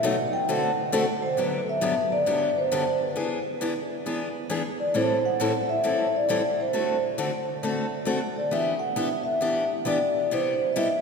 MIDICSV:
0, 0, Header, 1, 3, 480
1, 0, Start_track
1, 0, Key_signature, 1, "major"
1, 0, Tempo, 446761
1, 1465, Time_signature, 4, 2, 24, 8
1, 11832, End_track
2, 0, Start_track
2, 0, Title_t, "Vibraphone"
2, 0, Program_c, 0, 11
2, 55, Note_on_c, 0, 78, 86
2, 343, Note_off_c, 0, 78, 0
2, 357, Note_on_c, 0, 79, 103
2, 510, Note_off_c, 0, 79, 0
2, 518, Note_on_c, 0, 78, 80
2, 1315, Note_on_c, 0, 72, 82
2, 1345, Note_off_c, 0, 78, 0
2, 1479, Note_off_c, 0, 72, 0
2, 1495, Note_on_c, 0, 71, 73
2, 1801, Note_off_c, 0, 71, 0
2, 1819, Note_on_c, 0, 76, 85
2, 2246, Note_off_c, 0, 76, 0
2, 2280, Note_on_c, 0, 74, 82
2, 2763, Note_off_c, 0, 74, 0
2, 2771, Note_on_c, 0, 72, 74
2, 3202, Note_off_c, 0, 72, 0
2, 3244, Note_on_c, 0, 71, 63
2, 3679, Note_off_c, 0, 71, 0
2, 5156, Note_on_c, 0, 74, 77
2, 5305, Note_off_c, 0, 74, 0
2, 5337, Note_on_c, 0, 72, 79
2, 5643, Note_off_c, 0, 72, 0
2, 5646, Note_on_c, 0, 78, 85
2, 6117, Note_on_c, 0, 76, 91
2, 6127, Note_off_c, 0, 78, 0
2, 6603, Note_off_c, 0, 76, 0
2, 6620, Note_on_c, 0, 74, 82
2, 7048, Note_off_c, 0, 74, 0
2, 7091, Note_on_c, 0, 72, 66
2, 7523, Note_off_c, 0, 72, 0
2, 9003, Note_on_c, 0, 74, 72
2, 9148, Note_off_c, 0, 74, 0
2, 9158, Note_on_c, 0, 76, 83
2, 9296, Note_off_c, 0, 76, 0
2, 9448, Note_on_c, 0, 78, 93
2, 9899, Note_off_c, 0, 78, 0
2, 9921, Note_on_c, 0, 76, 76
2, 10375, Note_off_c, 0, 76, 0
2, 10598, Note_on_c, 0, 74, 75
2, 11039, Note_off_c, 0, 74, 0
2, 11088, Note_on_c, 0, 72, 74
2, 11485, Note_off_c, 0, 72, 0
2, 11525, Note_on_c, 0, 75, 56
2, 11556, Note_off_c, 0, 75, 0
2, 11568, Note_on_c, 0, 76, 79
2, 11832, Note_off_c, 0, 76, 0
2, 11832, End_track
3, 0, Start_track
3, 0, Title_t, "Steel-string acoustic guitar"
3, 0, Program_c, 1, 25
3, 33, Note_on_c, 1, 47, 87
3, 39, Note_on_c, 1, 54, 90
3, 45, Note_on_c, 1, 57, 88
3, 48, Note_on_c, 1, 63, 97
3, 48, Note_on_c, 1, 66, 90
3, 154, Note_off_c, 1, 47, 0
3, 157, Note_off_c, 1, 54, 0
3, 160, Note_off_c, 1, 57, 0
3, 162, Note_off_c, 1, 63, 0
3, 162, Note_off_c, 1, 66, 0
3, 523, Note_on_c, 1, 57, 74
3, 524, Note_on_c, 1, 60, 75
3, 526, Note_on_c, 1, 50, 70
3, 531, Note_on_c, 1, 66, 80
3, 538, Note_on_c, 1, 69, 85
3, 751, Note_off_c, 1, 57, 0
3, 751, Note_off_c, 1, 60, 0
3, 752, Note_off_c, 1, 50, 0
3, 755, Note_off_c, 1, 66, 0
3, 758, Note_off_c, 1, 69, 0
3, 993, Note_on_c, 1, 50, 81
3, 998, Note_on_c, 1, 57, 96
3, 999, Note_on_c, 1, 60, 95
3, 1006, Note_on_c, 1, 66, 99
3, 1010, Note_on_c, 1, 69, 96
3, 1114, Note_off_c, 1, 50, 0
3, 1117, Note_off_c, 1, 57, 0
3, 1117, Note_off_c, 1, 60, 0
3, 1121, Note_off_c, 1, 66, 0
3, 1123, Note_off_c, 1, 69, 0
3, 1473, Note_on_c, 1, 50, 62
3, 1477, Note_on_c, 1, 43, 57
3, 1480, Note_on_c, 1, 59, 64
3, 1485, Note_on_c, 1, 54, 63
3, 1485, Note_on_c, 1, 62, 65
3, 1494, Note_on_c, 1, 67, 66
3, 1706, Note_off_c, 1, 50, 0
3, 1708, Note_off_c, 1, 43, 0
3, 1710, Note_off_c, 1, 59, 0
3, 1712, Note_off_c, 1, 54, 0
3, 1712, Note_off_c, 1, 62, 0
3, 1717, Note_off_c, 1, 67, 0
3, 1947, Note_on_c, 1, 43, 79
3, 1948, Note_on_c, 1, 50, 76
3, 1950, Note_on_c, 1, 54, 72
3, 1957, Note_on_c, 1, 59, 83
3, 1960, Note_on_c, 1, 62, 83
3, 1965, Note_on_c, 1, 67, 88
3, 2072, Note_off_c, 1, 43, 0
3, 2072, Note_off_c, 1, 50, 0
3, 2073, Note_off_c, 1, 54, 0
3, 2077, Note_off_c, 1, 59, 0
3, 2078, Note_off_c, 1, 62, 0
3, 2081, Note_off_c, 1, 67, 0
3, 2432, Note_on_c, 1, 43, 68
3, 2436, Note_on_c, 1, 50, 62
3, 2437, Note_on_c, 1, 54, 72
3, 2439, Note_on_c, 1, 62, 69
3, 2444, Note_on_c, 1, 59, 66
3, 2449, Note_on_c, 1, 67, 65
3, 2666, Note_off_c, 1, 43, 0
3, 2668, Note_off_c, 1, 50, 0
3, 2669, Note_off_c, 1, 54, 0
3, 2670, Note_off_c, 1, 62, 0
3, 2672, Note_off_c, 1, 59, 0
3, 2675, Note_off_c, 1, 67, 0
3, 2918, Note_on_c, 1, 43, 80
3, 2919, Note_on_c, 1, 50, 83
3, 2925, Note_on_c, 1, 54, 77
3, 2925, Note_on_c, 1, 59, 81
3, 2927, Note_on_c, 1, 62, 80
3, 2932, Note_on_c, 1, 67, 82
3, 3038, Note_off_c, 1, 43, 0
3, 3038, Note_off_c, 1, 50, 0
3, 3041, Note_off_c, 1, 54, 0
3, 3041, Note_off_c, 1, 59, 0
3, 3042, Note_off_c, 1, 62, 0
3, 3045, Note_off_c, 1, 67, 0
3, 3390, Note_on_c, 1, 59, 60
3, 3394, Note_on_c, 1, 52, 59
3, 3397, Note_on_c, 1, 62, 66
3, 3401, Note_on_c, 1, 68, 65
3, 3626, Note_off_c, 1, 59, 0
3, 3627, Note_off_c, 1, 52, 0
3, 3629, Note_off_c, 1, 62, 0
3, 3631, Note_off_c, 1, 68, 0
3, 3878, Note_on_c, 1, 52, 75
3, 3882, Note_on_c, 1, 59, 76
3, 3888, Note_on_c, 1, 62, 85
3, 3895, Note_on_c, 1, 68, 85
3, 3998, Note_off_c, 1, 52, 0
3, 4000, Note_off_c, 1, 59, 0
3, 4003, Note_off_c, 1, 62, 0
3, 4007, Note_off_c, 1, 68, 0
3, 4361, Note_on_c, 1, 52, 63
3, 4366, Note_on_c, 1, 59, 67
3, 4369, Note_on_c, 1, 68, 68
3, 4371, Note_on_c, 1, 62, 68
3, 4591, Note_off_c, 1, 52, 0
3, 4593, Note_off_c, 1, 59, 0
3, 4595, Note_off_c, 1, 68, 0
3, 4596, Note_off_c, 1, 62, 0
3, 4830, Note_on_c, 1, 52, 75
3, 4835, Note_on_c, 1, 59, 85
3, 4836, Note_on_c, 1, 62, 80
3, 4845, Note_on_c, 1, 68, 86
3, 4954, Note_off_c, 1, 52, 0
3, 4956, Note_off_c, 1, 59, 0
3, 4957, Note_off_c, 1, 62, 0
3, 4962, Note_off_c, 1, 68, 0
3, 5309, Note_on_c, 1, 45, 59
3, 5314, Note_on_c, 1, 52, 69
3, 5315, Note_on_c, 1, 60, 61
3, 5322, Note_on_c, 1, 55, 66
3, 5324, Note_on_c, 1, 64, 69
3, 5325, Note_on_c, 1, 69, 69
3, 5545, Note_off_c, 1, 45, 0
3, 5548, Note_off_c, 1, 52, 0
3, 5548, Note_off_c, 1, 60, 0
3, 5552, Note_off_c, 1, 55, 0
3, 5553, Note_off_c, 1, 64, 0
3, 5553, Note_off_c, 1, 69, 0
3, 5798, Note_on_c, 1, 45, 83
3, 5806, Note_on_c, 1, 52, 78
3, 5809, Note_on_c, 1, 64, 80
3, 5812, Note_on_c, 1, 55, 90
3, 5812, Note_on_c, 1, 60, 85
3, 5816, Note_on_c, 1, 69, 89
3, 5918, Note_off_c, 1, 45, 0
3, 5922, Note_off_c, 1, 52, 0
3, 5924, Note_off_c, 1, 64, 0
3, 5925, Note_off_c, 1, 55, 0
3, 5925, Note_off_c, 1, 60, 0
3, 5927, Note_off_c, 1, 69, 0
3, 6269, Note_on_c, 1, 52, 67
3, 6272, Note_on_c, 1, 45, 65
3, 6275, Note_on_c, 1, 55, 65
3, 6279, Note_on_c, 1, 60, 64
3, 6282, Note_on_c, 1, 69, 74
3, 6283, Note_on_c, 1, 64, 62
3, 6505, Note_off_c, 1, 52, 0
3, 6507, Note_off_c, 1, 45, 0
3, 6508, Note_off_c, 1, 55, 0
3, 6510, Note_off_c, 1, 60, 0
3, 6512, Note_off_c, 1, 64, 0
3, 6512, Note_off_c, 1, 69, 0
3, 6754, Note_on_c, 1, 45, 81
3, 6762, Note_on_c, 1, 52, 80
3, 6768, Note_on_c, 1, 55, 81
3, 6768, Note_on_c, 1, 60, 78
3, 6769, Note_on_c, 1, 64, 81
3, 6774, Note_on_c, 1, 69, 83
3, 6876, Note_off_c, 1, 45, 0
3, 6880, Note_off_c, 1, 52, 0
3, 6883, Note_off_c, 1, 55, 0
3, 6883, Note_off_c, 1, 60, 0
3, 6884, Note_off_c, 1, 64, 0
3, 6886, Note_off_c, 1, 69, 0
3, 7233, Note_on_c, 1, 50, 60
3, 7235, Note_on_c, 1, 57, 64
3, 7242, Note_on_c, 1, 60, 64
3, 7245, Note_on_c, 1, 66, 61
3, 7248, Note_on_c, 1, 69, 61
3, 7467, Note_off_c, 1, 50, 0
3, 7468, Note_off_c, 1, 57, 0
3, 7471, Note_off_c, 1, 60, 0
3, 7473, Note_off_c, 1, 66, 0
3, 7475, Note_off_c, 1, 69, 0
3, 7714, Note_on_c, 1, 50, 76
3, 7718, Note_on_c, 1, 57, 78
3, 7719, Note_on_c, 1, 69, 80
3, 7720, Note_on_c, 1, 60, 86
3, 7721, Note_on_c, 1, 66, 80
3, 7836, Note_off_c, 1, 50, 0
3, 7838, Note_off_c, 1, 57, 0
3, 7839, Note_off_c, 1, 60, 0
3, 7839, Note_off_c, 1, 69, 0
3, 7840, Note_off_c, 1, 66, 0
3, 8198, Note_on_c, 1, 57, 69
3, 8200, Note_on_c, 1, 50, 64
3, 8202, Note_on_c, 1, 60, 62
3, 8210, Note_on_c, 1, 66, 67
3, 8215, Note_on_c, 1, 69, 72
3, 8430, Note_off_c, 1, 50, 0
3, 8430, Note_off_c, 1, 57, 0
3, 8431, Note_off_c, 1, 60, 0
3, 8436, Note_off_c, 1, 66, 0
3, 8438, Note_off_c, 1, 69, 0
3, 8652, Note_on_c, 1, 50, 67
3, 8663, Note_on_c, 1, 57, 70
3, 8664, Note_on_c, 1, 60, 76
3, 8668, Note_on_c, 1, 66, 91
3, 8669, Note_on_c, 1, 69, 86
3, 8785, Note_off_c, 1, 50, 0
3, 8791, Note_off_c, 1, 57, 0
3, 8791, Note_off_c, 1, 60, 0
3, 8793, Note_off_c, 1, 66, 0
3, 8793, Note_off_c, 1, 69, 0
3, 9145, Note_on_c, 1, 52, 62
3, 9148, Note_on_c, 1, 59, 63
3, 9159, Note_on_c, 1, 62, 69
3, 9162, Note_on_c, 1, 67, 63
3, 9383, Note_off_c, 1, 52, 0
3, 9384, Note_off_c, 1, 59, 0
3, 9390, Note_off_c, 1, 62, 0
3, 9391, Note_off_c, 1, 67, 0
3, 9628, Note_on_c, 1, 59, 88
3, 9629, Note_on_c, 1, 52, 70
3, 9636, Note_on_c, 1, 62, 83
3, 9637, Note_on_c, 1, 67, 78
3, 9753, Note_off_c, 1, 52, 0
3, 9753, Note_off_c, 1, 59, 0
3, 9757, Note_off_c, 1, 62, 0
3, 9757, Note_off_c, 1, 67, 0
3, 10107, Note_on_c, 1, 52, 65
3, 10117, Note_on_c, 1, 62, 74
3, 10119, Note_on_c, 1, 59, 64
3, 10121, Note_on_c, 1, 67, 70
3, 10344, Note_off_c, 1, 52, 0
3, 10349, Note_off_c, 1, 62, 0
3, 10350, Note_off_c, 1, 59, 0
3, 10351, Note_off_c, 1, 67, 0
3, 10584, Note_on_c, 1, 52, 75
3, 10592, Note_on_c, 1, 59, 73
3, 10600, Note_on_c, 1, 67, 84
3, 10602, Note_on_c, 1, 62, 78
3, 10710, Note_off_c, 1, 52, 0
3, 10715, Note_off_c, 1, 59, 0
3, 10719, Note_off_c, 1, 67, 0
3, 10720, Note_off_c, 1, 62, 0
3, 11081, Note_on_c, 1, 48, 61
3, 11081, Note_on_c, 1, 55, 62
3, 11087, Note_on_c, 1, 64, 59
3, 11090, Note_on_c, 1, 59, 69
3, 11097, Note_on_c, 1, 67, 69
3, 11310, Note_off_c, 1, 55, 0
3, 11311, Note_off_c, 1, 48, 0
3, 11313, Note_off_c, 1, 64, 0
3, 11315, Note_off_c, 1, 59, 0
3, 11318, Note_off_c, 1, 67, 0
3, 11558, Note_on_c, 1, 48, 75
3, 11562, Note_on_c, 1, 59, 85
3, 11563, Note_on_c, 1, 55, 76
3, 11566, Note_on_c, 1, 64, 79
3, 11570, Note_on_c, 1, 67, 83
3, 11677, Note_off_c, 1, 48, 0
3, 11679, Note_off_c, 1, 59, 0
3, 11680, Note_off_c, 1, 55, 0
3, 11681, Note_off_c, 1, 64, 0
3, 11683, Note_off_c, 1, 67, 0
3, 11832, End_track
0, 0, End_of_file